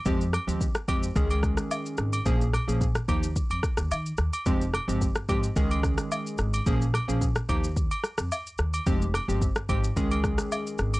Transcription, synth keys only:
X:1
M:4/4
L:1/16
Q:1/4=109
K:Fm
V:1 name="Synth keys"
[F,A,CG] z2 [F,A,CG] z2 [F,A,CG] z [E,A,DA]6- [E,A,DA] z | [F,B,DA] z2 [F,B,DA] z2 [F,B,EG] z8 z | [F,A,CG] z2 [F,A,CG] z2 [F,A,CG] z [E,A,DA]6- [E,A,DA] z | [F,B,DA] z2 [F,B,DA] z2 [F,B,EG] z8 z |
[F,A,CG] z2 [F,A,CG] z2 [F,A,CG] z [E,A,DA]6- [E,A,DA] z |]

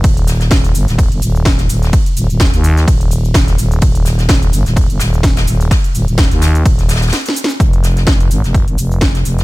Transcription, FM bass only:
X:1
M:4/4
L:1/16
Q:"Swing 16ths" 1/4=127
K:Ebmix
V:1 name="FM bass" clef=bass
E,,,4 E,,,2 G,,, E,,,2 G,,, E,,,4 E,,,2 | z2 E,,, E,,,2 E,,3 E,,,4 E,,,2 E,,,2 | E,,,4 E,,,2 G,,, E,,,2 G,,, E,,,4 E,,,2 | z2 E,,, E,,,2 E,,3 E,,,4 z4 |
F,,,4 F,,,2 A,,, F,,,2 A,,, F,,,4 F,,,2 |]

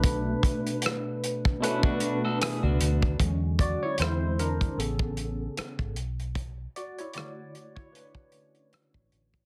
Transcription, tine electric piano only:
X:1
M:4/4
L:1/16
Q:"Swing 16ths" 1/4=76
K:Bdor
V:1 name="Tine electric piano"
[B,,A,DB]4- [B,,A,DB] z3 [B,,A,DB]6- [B,,A,DB] z | z2 [Fd] [Ec] [E^B]2 [D^A]2 [C=A]6 z2 | z2 [Fd] [Ec] [Fd]3 [Ec] [DB]6 z2 |]
V:2 name="Tine electric piano" clef=bass
z16 | [D,F,G,C]4 [D,G,^B,]4 [C,=B,G]6 z2 | z4 [D,A,c]6 [D,A,C]2 z4 |]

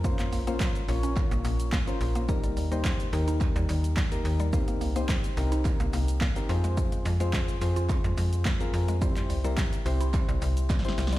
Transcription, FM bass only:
X:1
M:4/4
L:1/16
Q:1/4=107
K:Fm
V:1 name="FM bass" clef=bass
F,,2 B,,,4 B,,,3 B,,, B,,,4 B,,,2- | B,,,2 E,,4 E,,3 E,, E,,4 E,,2- | E,,2 C,,4 C,,3 C,, C,,4 F,,2- | F,,2 F,,4 F,,3 F,, F,,4 F,,2- |
F,,2 C,,4 C,,3 C,, C,,4 C,,2 |]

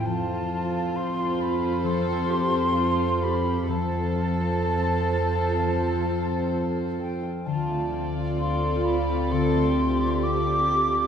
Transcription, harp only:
X:1
M:4/4
L:1/16
Q:1/4=65
K:Flyd
V:1 name="Harp"
[F,CAc] C F A c a A F F, C F A c2 A F | F, C F A c2 A F F, C F A c2 A F | D, A, C2 A c2 C D, A, C2 A c2 C |]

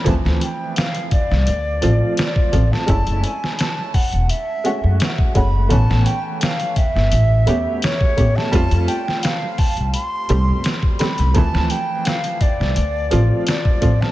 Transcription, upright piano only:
X:1
M:4/4
L:1/8
Q:1/4=85
K:Ddor
V:1 name="Upright piano"
[E,F,A,C]4- [E,F,A,C] [F,A,CF]2 [F,A,CF] | [^G,A,^CE]4- [G,A,CE] [G,A,C^F]2 [G,A,CF] | [E,A,B,^C]4- [E,A,B,C] [A,B,CG]2 [A,B,CG] | [G,A,CF]4- [G,A,CF] [G,A,CG]2 [G,A,CG] |
[E,F,A,C]4- [E,F,A,C] [F,A,CF]2 [F,A,CF] |]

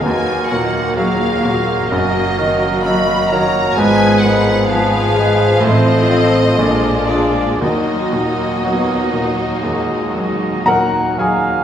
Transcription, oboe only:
X:1
M:4/4
L:1/8
Q:1/4=63
K:Ebm
V:1 name="Oboe"
B B B B B B B B | c c c c =c c =d d | e e e e e e g f |]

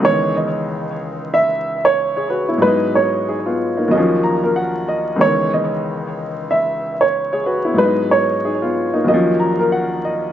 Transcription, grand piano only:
X:1
M:4/4
L:1/16
Q:"Swing 16ths" 1/4=93
K:C#dor
V:1 name="Grand piano"
z12 z [Gc] [FB] [B,E]- | [B,E] z3 [DG] [B,^E]2 [A,D]2 z a2 f2 d2 | z12 z [Gc] [FB] [B,E]- | [B,E] z3 [DG] [B,^E]2 [A,D]2 z a2 f2 d2 |]
V:2 name="Grand piano" clef=bass
[C,,D,E,G,B,]16 | [G,,F,G,B,D]8 [D,,^E,F,A,C]8 | [C,,D,E,G,B,]16 | [G,,F,G,B,D]8 [D,,^E,F,A,C]8 |]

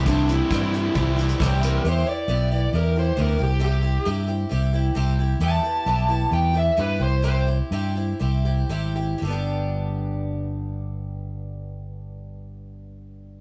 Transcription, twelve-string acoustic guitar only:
X:1
M:4/4
L:1/8
Q:1/4=132
K:G
V:1 name="Twelve-string acoustic guitar"
[C,G,CEG] [CEG] [C,G,CEG] [CEG] [G,CEG] [CEG] [C,G,CEG] [CEG] | [E,G,B,EG] [B,EG] [E,G,B,EG] [B,EG] [G,B,EG] [B,EG] [E,G,B,EG] [CEG] | [C,G,CEG] [CEG] [C,G,CEG] [CEG] [G,CEG] [CEG] [C,G,CEG] [CEG] | [E,G,B,EG] [B,EG] [E,G,B,EG] [B,EG] [G,B,EG] [B,EG] [E,G,B,EG] [CEG] |
[C,G,CEG] [CEG] [C,G,CEG] [CEG] [G,CEG] [CEG] [C,G,CEG] [CEG] | [G,,D,G,B,DG]8- | [G,,D,G,B,DG]8 |]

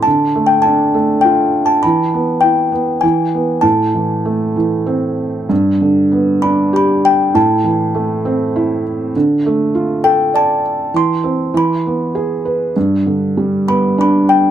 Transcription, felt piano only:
X:1
M:3/4
L:1/8
Q:1/4=100
K:Am
V:1 name="Felt piano"
D, A, D A, F2 | E, B, E B, E, B, | A,, E, A, E, C2 | G,, D, B, D G2 |
A,, E, A, C E2 | D, A, F A d2 | E, C E, B, ^G B | G,, D, G, B, D2 |]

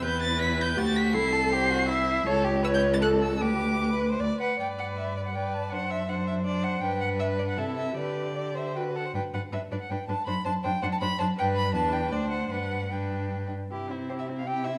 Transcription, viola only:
X:1
M:3/4
L:1/8
Q:1/4=160
K:G
V:1 name="Viola"
B4 G2 | A2 c2 e2 | ^c2 c2 A2 | B4- B z |
B4 B2 | D2 D2 D2 | D4 E2 | G4 F z |
D D D D D D | D D D D D D | D2 D2 D2 | D2 D3 z |
[K:C] E C E C E C |]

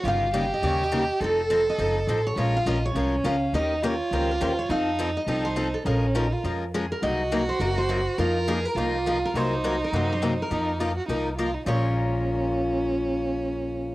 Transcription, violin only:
X:1
M:4/4
L:1/8
Q:"Swing" 1/4=206
K:Bbm
V:1 name="Violin"
F2 =G6 | =A6- A z | F4 D4 | E2 F6 |
E4 E4 | D2 E F z4 | G8 | B4 F4 |
E8 | E2 F G E2 F E | D8- | D8 |]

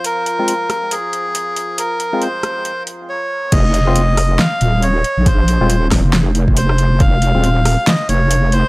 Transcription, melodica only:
X:1
M:4/4
L:1/8
Q:"Swing 16ths" 1/4=138
K:Fm
V:1 name="Melodica"
B4 A4 | B2 c3 z d2 | e4 f2 d2 | c3 z3 c2 |
f4 e d2 c |]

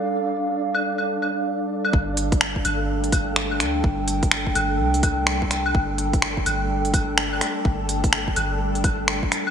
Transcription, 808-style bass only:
X:1
M:4/4
L:1/8
Q:"Swing 16ths" 1/4=126
K:Cdor
V:1 name="808-style bass" clef=bass
z8 | G,,,3 G,,,4 D,, | G,,,3 G,,, C,,4 | G,,,3 G,,,4 z |
G,,,3 G,,,4 z |]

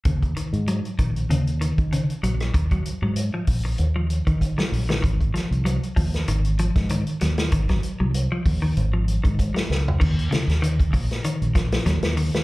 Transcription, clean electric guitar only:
X:1
M:4/4
L:1/16
Q:"Swing 16ths" 1/4=97
K:Ebdor
V:1 name="Clean electric guitar" clef=bass
D,2 E,2 G,2 E,2 D,2 E,2 D,2 G,2 | z G,2 G,2 F,2 z2 F,2 E,2 G,2 E, | E,2 F,2 G,2 F,2 E,2 F,2 E,2 G,2 | E, G,2 G,2 F,2 E,2 F,2 E,2 G,2 z |
E,2 D,2 E,2 z2 E,2 F,2 G,2 E,2 |]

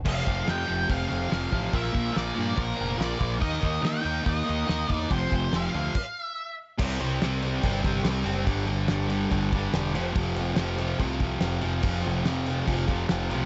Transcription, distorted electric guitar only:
X:1
M:4/4
L:1/8
Q:1/4=142
K:Flyd
V:1 name="Distorted electric guitar" clef=bass
[F,,C,F,] [F,,C,F,] [F,,C,F,] [F,,C,F,] [F,,C,F,] [F,,C,F,] [F,,C,F,] [F,,C,F,] | [_B,,F,_B,] [B,,F,B,] [B,,F,B,] [B,,F,B,] [B,,F,B,] [B,,F,B,] [B,,F,B,] [B,,F,B,] | [_E,_B,_E] [E,B,E] [E,B,E] [E,B,E] [E,B,E] [E,B,E] [E,B,E] [E,B,E] | [F,,C,F,] [F,,C,F,] [F,,C,F,] [F,,C,F,] z4 |
[C,G,C] [G,C] [C,G,C] [G,C] [C,G,C] [G,C]2 [G,C] | [G,,D,G,] [D,G,] [G,,D,G,] [D,G,] [G,,D,G,] [D,G,]2 [F,,C,F,] | [F,,C,F,] [C,F,] [F,,C,F,] [C,F,] [F,,C,F,] [C,F,]2 [C,F,] | [F,,C,F,] [C,F,] [F,,C,F,] [C,F,] [F,,C,F,] [C,F,]2 [C,F,] |]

